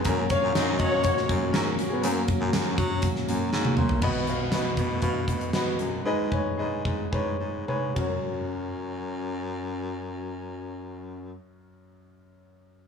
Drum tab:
CC |----------------|----------------|x---------------|----------------|
RD |----------------|----------------|----------------|--------------x-|
HH |x-x-x-x-x-x-x-x-|x-x-x-x-x-x-----|--x-x-x-x-xxx-x-|----------------|
SD |----o----o--o---|----o----o--o---|----o-------o---|----------------|
T1 |----------------|-------------o--|----------------|------------o---|
T2 |----------------|--------------o-|----------------|----------------|
FT |----------------|---------------o|----------------|----------------|
BD |o-o---o-o-o-----|--o---o-o-------|o-----o-o-o-----|--o---o-o-----o-|

CC |----------------|----------------|
RD |----------------|----------------|
HH |----------------|----------------|
SD |----------------|----------------|
T1 |----------------|----------------|
T2 |----------------|----------------|
FT |----------------|----------------|
BD |----------------|----------------|